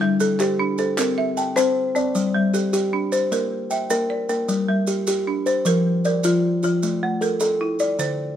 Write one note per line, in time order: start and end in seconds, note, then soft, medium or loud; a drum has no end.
0.00 0.21 G3 medium
0.00 0.40 G3 medium
0.00 clap soft
0.20 0.79 A4 medium
0.20 0.78 A4 medium
0.20 maracas medium
0.39 0.79 G4 medium
0.39 0.78 C5 medium
0.39 clap soft
0.39 maracas medium
0.59 0.98 D4 medium
0.78 1.18 A4 medium
0.78 1.37 C5 medium
0.78 maracas medium
0.98 1.37 C4 medium
0.98 1.18 A#4 medium
0.98 clap medium
0.98 maracas medium
1.18 1.76 E5 medium
1.37 1.96 G5 medium
1.37 1.95 A5 medium
1.37 maracas medium
1.56 1.94 C4 medium
1.56 1.95 C5 medium
1.56 clap soft
1.56 maracas medium
1.95 2.34 C4 medium
1.95 2.35 D5 medium
1.95 maracas medium
2.15 2.54 G3 medium
2.15 maracas medium
2.34 2.73 G3 medium
2.54 2.72 G4 medium
2.54 3.12 A4 medium
2.54 maracas medium
2.73 3.12 G4 medium
2.73 maracas medium
2.93 3.32 D4 medium
3.12 3.71 C5 medium
3.12 3.51 C5 medium
3.12 maracas medium
3.32 3.71 A#3 medium
3.32 3.51 A#4 medium
3.32 maracas medium
3.71 4.29 E5 medium
3.71 4.29 G5 medium
3.71 maracas medium
3.90 4.28 A#3 medium
3.90 4.28 A#4 medium
3.90 maracas medium
4.10 4.68 D5 medium
4.29 4.68 A#3 medium
4.29 4.68 A#4 medium
4.29 maracas medium
4.48 4.88 G3 medium
4.48 maracas medium
4.68 5.07 G3 medium
4.87 5.06 G4 medium
4.87 maracas medium
5.07 5.46 G4 medium
5.07 maracas medium
5.27 5.66 D4 medium
5.46 5.85 C5 medium
5.46 6.05 C5 medium
5.46 maracas medium
5.65 6.04 F3 medium
5.65 5.85 A#4 medium
5.65 maracas medium
6.05 6.64 A#4 medium
6.05 6.63 D5 medium
6.05 maracas medium
6.24 6.63 F3 medium
6.24 6.62 F4 medium
6.24 maracas medium
6.63 7.02 F3 medium
6.63 7.02 F4 medium
6.63 maracas medium
6.83 7.22 A3 medium
6.83 maracas medium
7.03 7.41 A3 medium
7.21 7.39 A4 medium
7.21 7.80 A#4 medium
7.21 maracas medium
7.40 7.80 A4 medium
7.40 maracas medium
7.61 7.99 E4 medium
7.79 8.37 D5 medium
7.79 8.19 D5 medium
7.79 maracas medium
7.99 8.37 D3 medium
7.99 8.19 C5 medium
7.99 maracas medium